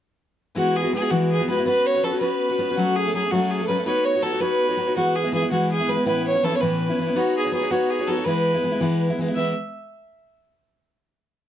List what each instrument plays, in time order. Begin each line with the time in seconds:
0.55 steel-string acoustic guitar E3 G#3 B3 E4 F#4, fiddle F#4
0.76 fiddle G#4
0.83 steel-string acoustic guitar B3 E4 F#4
0.93 steel-string acoustic guitar G#3 B3 E4 F#4, fiddle G#4
1.01 steel-string acoustic guitar B3 E4 F#4
1.11 steel-string acoustic guitar E3 G#3 B3 E4 F#4, fiddle F#4
1.31 fiddle G#4
1.39 steel-string acoustic guitar B3 E4 F#4
1.48 steel-string acoustic guitar G#3 B3 E4 F#4, fiddle B4
1.57 steel-string acoustic guitar B3 E4 F#4
1.66 steel-string acoustic guitar B3 C#4 F#4 B4, fiddle B4
1.86 fiddle C#5
1.95 steel-string acoustic guitar C#4 F#4 B4
2.03 steel-string acoustic guitar B3 C#4 F#4 B4, fiddle A4
2.11 steel-string acoustic guitar C#4 F#4 B4
2.20 steel-string acoustic guitar B3 C#4 F#4 B4, fiddle B4
2.49 steel-string acoustic guitar C#4 F#4 B4
2.59 steel-string acoustic guitar B3 C#4 F#4 B4
2.68 steel-string acoustic guitar C#4 F#4 B4
2.76 steel-string acoustic guitar F#3 A3 C#4 A4, fiddle F#4
2.96 fiddle G#4
3.05 steel-string acoustic guitar A3 C#4 A4
3.14 steel-string acoustic guitar F#3 A3 C#4 A4, fiddle G#4
3.24 steel-string acoustic guitar A3 C#4 A4
3.31 steel-string acoustic guitar F#3 A3 C#4 A4, fiddle F#4
3.51 fiddle G#4
3.61 steel-string acoustic guitar A3 C#4 A4
3.67 steel-string acoustic guitar F#3 A3 C#4 A4, fiddle B4
3.77 steel-string acoustic guitar A3 C#4 A4
3.85 steel-string acoustic guitar B3 D#4 F#4 C#5, fiddle B4
4.05 fiddle C#5
4.14 steel-string acoustic guitar D#4 F#4 C#5
4.22 steel-string acoustic guitar B3 D#4 F#4 C#5, fiddle A4
4.32 steel-string acoustic guitar D#4 F#4 C#5
4.40 steel-string acoustic guitar B3 D#4 F#4 C#5, fiddle B4
4.68 steel-string acoustic guitar D#4 F#4 C#5
4.77 steel-string acoustic guitar B3 D#4 F#4 C#5
4.86 steel-string acoustic guitar D#4 F#4 C#5
4.96 steel-string acoustic guitar E3 G#3 B3 E4, fiddle F#4
5.16 fiddle G#4
5.23 steel-string acoustic guitar G#3 B3 E4
5.32 steel-string acoustic guitar E3 G#3 B3 E4, fiddle G#4
5.42 steel-string acoustic guitar G#3 B3 E4
5.51 steel-string acoustic guitar E3 G#3 B3 E4, fiddle F#4
5.72 fiddle G#4
5.80 steel-string acoustic guitar G#3 B3 E4
5.88 steel-string acoustic guitar E3 G#3 B3 E4, fiddle B4
5.96 steel-string acoustic guitar G#3 B3 E4
6.05 steel-string acoustic guitar A2 E3 B3 C#4 E4, fiddle B4
6.27 fiddle C#5
6.34 steel-string acoustic guitar B3 C#4 E4
6.43 steel-string acoustic guitar E3 B3 C#4 E4, fiddle A4
6.51 steel-string acoustic guitar B3 C#4 E4
6.55 fiddle C#5
6.60 steel-string acoustic guitar A2 E3 B3 C#4 E4, fiddle B4
6.89 steel-string acoustic guitar B3 C#4 E4
6.98 steel-string acoustic guitar E3 B3 C#4 E4
7.06 steel-string acoustic guitar B3 C#4 E4
7.15 steel-string acoustic guitar B3 D#4 F#4 C#5, fiddle F#4
7.37 fiddle G#4
7.44 steel-string acoustic guitar D#4 F#4 C#5
7.52 steel-string acoustic guitar B3 D#4 F#4 C#5, fiddle G#4
7.61 steel-string acoustic guitar D#4 F#4 C#5
7.71 steel-string acoustic guitar B3 D#4 F#4 C#5, fiddle F#4
7.90 fiddle G#4
7.99 steel-string acoustic guitar D#4 F#4 C#5
8.07 steel-string acoustic guitar B3 D#4 F#4 C#5, fiddle A4
8.16 steel-string acoustic guitar D#4 F#4 C#5
8.24 steel-string acoustic guitar E3 G#3 B3 E4, fiddle B4
8.54 steel-string acoustic guitar G#3 B3 E4
8.63 steel-string acoustic guitar E3 G#3 B3 E4
8.71 steel-string acoustic guitar G#3 B3 E4
8.81 steel-string acoustic guitar E3 G#3 B3 E4
9.10 steel-string acoustic guitar G#3 B3 E4
9.19 steel-string acoustic guitar E3 G#3 B3 E4
9.28 steel-string acoustic guitar G#3 B3 E4
9.35 steel-string acoustic guitar E3 G#3 B3 E4, fiddle E5